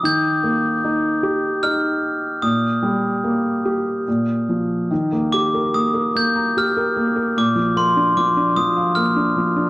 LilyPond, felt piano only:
\new Staff \with { instrumentName = "Felt piano" } { \time 3/4 \key ees \major \tempo 4 = 75 ees8 bes8 ees'8 g'8 ees'4 | bes,8 g8 bes8 g'8 bes,8 f8 | ees16 bes16 g'16 bes'16 bes16 bes'16 bes16 bes''16 g'16 bes'16 bes16 bes'16 | bes,16 f16 bes16 d'16 f16 d'16 f16 f''16 bes16 d'16 f16 d'16 | }